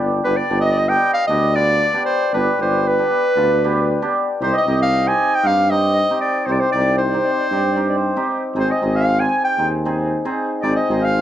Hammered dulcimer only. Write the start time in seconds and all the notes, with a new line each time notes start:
0.25 B3 D4 G4
0.50 B3 D4 G4
0.89 B3 D4 G4
1.29 B3 D4 G4
1.55 B3 D4 F4
1.94 B3 D4 G4
2.34 B3 D4 G4
2.59 B3 D4 G4
2.98 B3 D4 G4
3.36 B3 D4 F4
3.64 B3 D4 G4
4.02 B3 D4 G4
4.41 C4 D#4 G4
4.67 C4 D#4 G4
5.06 C4 D#4 G4
5.45 C4 D#4 G4
5.71 C4 D#4 G4
6.10 C4 D#4 G4
6.49 C4 D#4 G4
6.75 C4 D#4 G4
7.14 C4 D#4 G4
7.51 C4 D#4 G4
7.76 C4 D#4 G4
8.16 C4 D#4 G4
8.56 C4 D#4 G#4
8.82 C4 D#4 G#4
9.21 C4 D#4 G#4
9.58 C4 D#4 G#4
9.85 C4 D#4 G#4
10.25 C4 D#4 G#4
10.63 C4 D#4 G#4
10.90 C4 D#4 G#4